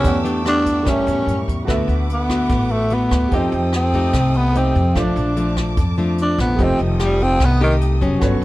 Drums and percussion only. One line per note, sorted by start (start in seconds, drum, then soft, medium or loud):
0.04 kick medium
0.04 closed hi-hat medium
0.25 closed hi-hat soft
0.46 cross-stick medium
0.46 closed hi-hat soft
0.66 kick soft
0.66 closed hi-hat soft
0.86 kick medium
0.86 cross-stick medium
0.86 closed hi-hat medium
1.08 closed hi-hat soft
1.28 closed hi-hat soft
1.48 kick soft
1.48 closed hi-hat soft
1.68 kick medium
1.68 cross-stick soft
1.68 closed hi-hat soft
1.89 closed hi-hat soft
2.09 closed hi-hat soft
2.29 kick soft
2.29 cross-stick medium
2.29 closed hi-hat soft
2.49 kick medium
2.49 closed hi-hat soft
2.70 closed hi-hat soft
2.90 closed hi-hat soft
3.11 kick soft
3.11 cross-stick medium
3.11 closed hi-hat soft
3.32 kick soft
3.32 closed hi-hat soft
3.53 closed hi-hat soft
3.73 cross-stick medium
3.73 closed hi-hat soft
3.93 kick soft
3.93 closed hi-hat soft
4.13 kick medium
4.13 cross-stick medium
4.13 closed hi-hat soft
4.34 closed hi-hat soft
4.55 closed hi-hat soft
4.75 kick soft
4.75 closed hi-hat soft
4.96 kick medium
4.96 cross-stick medium
4.96 closed hi-hat soft
5.17 closed hi-hat soft
5.37 closed hi-hat soft
5.57 kick soft
5.57 cross-stick medium
5.57 closed hi-hat soft
5.77 kick medium
5.77 closed hi-hat soft
5.98 closed hi-hat soft
6.18 closed hi-hat soft
6.38 kick soft
6.38 cross-stick medium
6.38 closed hi-hat soft
6.59 kick medium
6.59 closed hi-hat soft
6.80 closed hi-hat soft
7.00 cross-stick medium
7.00 closed hi-hat soft
7.20 kick soft
7.20 closed hi-hat soft
7.40 kick medium
7.40 cross-stick medium
7.40 closed hi-hat soft
7.61 closed hi-hat soft
7.81 closed hi-hat soft
8.01 kick soft
8.01 closed hi-hat soft
8.21 kick medium
8.21 cross-stick soft
8.21 closed hi-hat soft